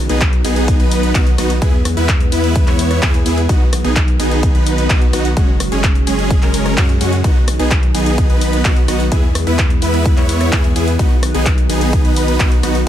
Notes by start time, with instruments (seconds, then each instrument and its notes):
Already playing: analog synth pad D#3 F#3 B3
0.09 sub bass B1, supersaw synth B3 D#4 G#4, closed hi-hat
0.21 kick, clap, closed hi-hat
0.33 closed hi-hat
0.45 sub bass B1, supersaw synth B3 D#4 G#4, open hi-hat
0.56 closed hi-hat
0.68 kick, closed hi-hat
0.80 sub bass B1, supersaw synth B3 D#4 B4, closed hi-hat
0.91 open hi-hat
1.03 closed hi-hat
1.15 sub bass B1, supersaw synth B3 D#4 F#4, kick, clap, closed hi-hat
1.27 closed hi-hat
1.38 sub bass B1, supersaw synth B3 D#4 F#4, cross-stick, open hi-hat
1.50 closed hi-hat
1.62 sub bass E2, analog synth pad E3 G#3, supersaw synth B3 E4 G#4, kick, closed hi-hat
1.85 cross-stick, open hi-hat
1.97 sub bass E2, supersaw synth B3 E4 B4, closed hi-hat
2.09 kick, clap, closed hi-hat
2.20 closed hi-hat
2.32 sub bass E2, supersaw synth B3 E4 B4, open hi-hat
2.44 closed hi-hat
2.56 kick, closed hi-hat
2.67 sub bass E2, supersaw synth B3 E4 C#5, clap, closed hi-hat
2.79 open hi-hat
2.91 cross-stick, closed hi-hat
3.02 sub bass E2, supersaw synth B3 E4 G#4, kick, clap, closed hi-hat
3.14 closed hi-hat
3.26 sub bass E2, supersaw synth B3 E4 G#4, open hi-hat
3.38 closed hi-hat
3.49 sub bass B1, analog synth pad D#3 F#3, supersaw synth B3 D#4 F#4, kick, closed hi-hat
3.73 cross-stick, open hi-hat
3.84 sub bass B1, supersaw synth B3 D#4 G#4, closed hi-hat
3.96 kick, clap, closed hi-hat
4.08 closed hi-hat
4.19 sub bass B1, supersaw synth B3 D#4 G#4, open hi-hat
4.31 closed hi-hat
4.43 kick, closed hi-hat
4.55 sub bass B1, supersaw synth B3 D#4 B4, closed hi-hat
4.66 open hi-hat
4.78 closed hi-hat
4.90 sub bass B1, supersaw synth B3 D#4 F#4, kick, clap, closed hi-hat
5.02 closed hi-hat
5.13 sub bass B1, supersaw synth B3 D#4 F#4, cross-stick, open hi-hat
5.25 closed hi-hat
5.37 sub bass F#1, analog synth pad C#3 G#3, supersaw synth G#3 C#4 F#4, kick, closed hi-hat
5.60 cross-stick, open hi-hat
5.72 sub bass F#1, supersaw synth G#3 C#4 G#4, closed hi-hat
5.84 kick, clap, closed hi-hat
5.95 closed hi-hat
6.07 sub bass F#1, supersaw synth G#3 C#4 G#4, open hi-hat
6.19 closed hi-hat
6.30 kick, closed hi-hat
6.42 sub bass F#1, supersaw synth G#3 C#4 A#4, clap, closed hi-hat
6.54 open hi-hat
6.66 cross-stick, closed hi-hat
6.77 sub bass F#2, supersaw synth G#3 C#4 F#4, kick, clap, closed hi-hat
6.89 closed hi-hat
7.01 sub bass F#2, supersaw synth G#3 C#4 F#4, open hi-hat
7.13 closed hi-hat
7.24 sub bass B1, analog synth pad D#3 B3, supersaw synth B3 D#4 F#4, kick, closed hi-hat
7.48 cross-stick, open hi-hat
7.59 sub bass B1, supersaw synth B3 D#4 G#4, closed hi-hat
7.71 kick, clap, closed hi-hat
7.83 closed hi-hat
7.95 sub bass B1, supersaw synth B3 D#4 G#4, open hi-hat
8.06 closed hi-hat
8.18 kick, closed hi-hat
8.30 sub bass B1, supersaw synth B3 D#4 B4, closed hi-hat
8.41 open hi-hat
8.53 closed hi-hat
8.65 sub bass B1, supersaw synth B3 D#4 F#4, kick, clap, closed hi-hat
8.77 closed hi-hat
8.88 sub bass B1, supersaw synth B3 D#4 F#4, cross-stick, open hi-hat
9.00 closed hi-hat
9.12 sub bass E2, analog synth pad E3 G#3, supersaw synth B3 E4 G#4, kick, closed hi-hat
9.35 cross-stick, open hi-hat
9.47 sub bass E2, supersaw synth B3 E4 B4, closed hi-hat
9.59 kick, clap, closed hi-hat
9.70 closed hi-hat
9.82 sub bass E2, supersaw synth B3 E4 B4, open hi-hat
9.94 closed hi-hat
10.06 kick, closed hi-hat
10.17 sub bass E2, supersaw synth B3 E4 C#5, clap, closed hi-hat
10.29 open hi-hat
10.41 cross-stick, closed hi-hat
10.52 sub bass E2, supersaw synth B3 E4 G#4, kick, clap, closed hi-hat
10.64 closed hi-hat
10.76 sub bass E2, supersaw synth B3 E4 G#4, open hi-hat
10.88 closed hi-hat
10.99 sub bass B1, analog synth pad D#3 F#3, supersaw synth B3 D#4 F#4, kick, closed hi-hat
11.23 cross-stick, open hi-hat
11.34 sub bass B1, supersaw synth B3 D#4 G#4, closed hi-hat
11.46 kick, clap, closed hi-hat
11.58 closed hi-hat
11.70 sub bass B1, supersaw synth B3 D#4 G#4, open hi-hat
11.81 closed hi-hat
11.93 kick, closed hi-hat
12.05 sub bass B1, supersaw synth B3 D#4 B4, closed hi-hat
12.16 open hi-hat
12.28 closed hi-hat
12.40 sub bass B1, supersaw synth B3 D#4 F#4, kick, clap, closed hi-hat
12.52 closed hi-hat
12.63 sub bass B1, supersaw synth B3 D#4 F#4, cross-stick, open hi-hat
12.75 closed hi-hat